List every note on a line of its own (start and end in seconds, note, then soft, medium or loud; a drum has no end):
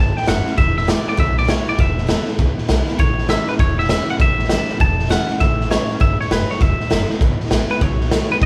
0.00 0.14 G1 medium
0.00 0.56 E2 medium
0.00 0.17 A5 loud
0.17 0.28 G5 loud
0.17 muted upright bass stroke medium
0.17 snare soft
0.22 0.45 E3 medium
0.22 snare soft
0.27 0.44 F#1 medium
0.27 0.46 G3 loud
0.27 0.46 C#4 loud
0.27 0.44 E4 loud
0.27 0.56 F#5 loud
0.27 snare loud
0.27 hi-hat pedal medium
0.46 0.58 C#4 medium
0.46 0.57 E4 medium
0.46 muted upright bass stroke medium
0.46 snare soft
0.57 0.92 E1 medium
0.57 1.16 E2 medium
0.57 0.76 E5 loud
0.57 kick loud
0.57 snare soft
0.77 0.89 E5 medium
0.77 snare soft
0.83 snare soft
0.87 1.06 D3 medium
0.87 1.06 G#3 medium
0.87 1.07 B3 medium
0.87 1.05 E4 loud
0.87 1.08 D5 medium
0.87 snare loud
0.87 hi-hat pedal medium
1.06 1.18 B3 soft
1.06 1.17 E4 medium
1.06 1.18 D5 medium
1.06 muted upright bass stroke medium
1.06 snare soft
1.17 1.53 B1 medium
1.17 1.76 B2 medium
1.17 1.38 E5 medium
1.17 kick loud
1.17 snare soft
1.37 1.50 D5 loud
1.37 snare soft
1.44 1.66 D3 medium
1.44 snare soft
1.49 1.67 G#3 medium
1.49 1.67 B3 loud
1.49 1.66 E4 loud
1.49 1.69 C#5 medium
1.49 snare loud
1.49 hi-hat pedal medium
1.67 1.79 B3 soft
1.67 1.78 E4 medium
1.67 1.80 D5 medium
1.67 snare soft
1.78 2.13 E1 medium
1.78 2.37 E2 loud
1.78 2.28 E5 medium
1.78 kick loud
1.78 snare soft
1.98 snare soft
2.07 2.26 D3 medium
2.07 2.27 G#3 medium
2.07 2.27 B3 medium
2.07 2.26 E4 medium
2.07 snare loud
2.07 hi-hat pedal medium
2.27 2.39 B3 soft
2.27 2.38 E4 medium
2.27 muted upright bass stroke medium
2.27 snare soft
2.38 2.55 C#2 medium
2.38 2.97 B2 medium
2.38 kick loud
2.38 snare soft
2.57 muted upright bass stroke medium
2.57 snare soft
2.68 2.85 B1 medium
2.68 2.87 D3 loud
2.68 2.87 G#3 medium
2.68 2.88 B3 loud
2.68 2.86 E4 loud
2.68 snare loud
2.68 hi-hat pedal medium
2.88 2.99 B3 medium
2.88 2.98 E4 medium
2.88 snare soft
2.99 3.33 A1 loud
2.99 3.57 A2 loud
2.99 3.29 C#5 medium
2.99 kick loud
2.99 snare soft
3.18 snare soft
3.28 3.47 E3 medium
3.28 3.48 G3 medium
3.28 3.48 C#4 loud
3.28 3.47 E4 loud
3.28 3.47 E5 medium
3.28 snare loud
3.28 hi-hat pedal medium
3.48 3.60 C#4 soft
3.48 3.59 E4 medium
3.48 3.54 B4 medium
3.48 muted upright bass stroke medium
3.48 snare soft
3.59 3.94 E1 medium
3.59 4.17 E2 medium
3.59 3.77 C#5 loud
3.59 kick loud
3.59 snare soft
3.79 3.89 E5 loud
3.79 snare soft
3.84 snare soft
3.89 4.08 E3 medium
3.89 4.08 G3 medium
3.89 4.08 C#4 loud
3.89 4.08 E4 loud
3.89 4.10 E5 medium
3.89 snare loud
3.89 hi-hat pedal medium
4.08 4.20 C#4 medium
4.08 4.19 E4 medium
4.08 4.15 F#5 medium
4.08 muted upright bass stroke medium
4.08 snare soft
4.20 4.54 A1 loud
4.20 4.78 A2 medium
4.20 4.77 E5 loud
4.20 kick loud
4.20 snare soft
4.39 snare soft
4.44 snare soft
4.49 4.68 E3 medium
4.49 4.69 G3 medium
4.49 4.69 C#4 loud
4.49 4.68 E4 medium
4.49 snare loud
4.49 hi-hat pedal loud
4.69 4.81 C#4 soft
4.69 4.80 E4 medium
4.69 muted upright bass stroke medium
4.69 snare soft
4.80 5.14 E1 medium
4.80 5.38 E2 medium
4.80 5.10 A5 loud
4.80 kick loud
4.80 snare soft
4.99 snare soft
5.05 snare soft
5.09 5.28 E3 medium
5.09 5.28 G3 loud
5.09 5.29 C#4 loud
5.09 5.28 E4 loud
5.09 5.41 F#5 loud
5.09 snare loud
5.09 hi-hat pedal medium
5.29 5.40 C#4 medium
5.29 5.39 E4 medium
5.29 muted upright bass stroke medium
5.29 snare soft
5.40 5.75 A1 medium
5.40 5.98 A2 loud
5.40 5.70 E5 loud
5.40 kick loud
5.40 snare soft
5.61 snare soft
5.70 5.89 E3 medium
5.70 5.89 G3 medium
5.70 5.89 C#4 medium
5.70 5.88 E4 loud
5.70 6.01 C#5 medium
5.70 snare loud
5.70 hi-hat pedal medium
5.90 6.01 C#4 soft
5.90 6.00 E4 medium
5.90 muted upright bass stroke medium
5.90 snare soft
6.00 6.17 G1 medium
6.00 6.29 G2 medium
6.00 6.20 E5 loud
6.00 kick loud
6.00 snare soft
6.19 6.30 C#5 medium
6.19 muted upright bass stroke medium
6.19 snare soft
6.30 6.47 F#1 medium
6.30 6.60 F#2 medium
6.30 6.51 B4 medium
6.30 snare loud
6.30 hi-hat pedal medium
6.50 6.62 C#5 medium
6.50 muted upright bass stroke medium
6.50 snare soft
6.61 6.74 E1 medium
6.61 7.19 E2 medium
6.61 7.10 E5 medium
6.61 kick loud
6.61 snare soft
6.80 muted upright bass stroke medium
6.80 snare soft
6.90 7.07 F#1 medium
6.90 7.09 D3 medium
6.90 7.09 G#3 medium
6.90 7.10 B3 medium
6.90 7.09 E4 medium
6.90 snare loud
6.90 hi-hat pedal medium
7.10 7.21 B3 medium
7.10 7.20 E4 medium
7.10 muted upright bass stroke medium
7.10 snare soft
7.21 7.37 G#1 medium
7.21 7.79 B2 loud
7.21 kick loud
7.21 snare soft
7.40 snare soft
7.46 snare soft
7.50 7.67 A1 medium
7.50 7.69 D3 medium
7.50 7.69 G#3 medium
7.50 7.70 B3 loud
7.50 7.69 E4 loud
7.50 snare loud
7.50 hi-hat pedal medium
7.70 7.82 B3 medium
7.70 7.81 E4 medium
7.70 7.82 B4 medium
7.70 muted upright bass stroke medium
7.70 snare soft
7.81 8.16 B1 loud
7.81 8.31 C#5 medium
7.81 kick loud
7.81 snare soft
8.01 snare soft
8.11 8.30 D#3 medium
8.11 8.30 A3 medium
8.11 8.30 B3 medium
8.11 8.30 F#4 medium
8.11 snare loud
8.11 hi-hat pedal medium
8.30 8.42 B3 soft
8.30 8.41 F#4 medium
8.30 8.36 B4 medium
8.30 muted upright bass stroke medium
8.30 snare soft
8.42 8.46 F#1 medium
8.42 8.46 F#2 loud
8.42 kick loud
8.42 snare soft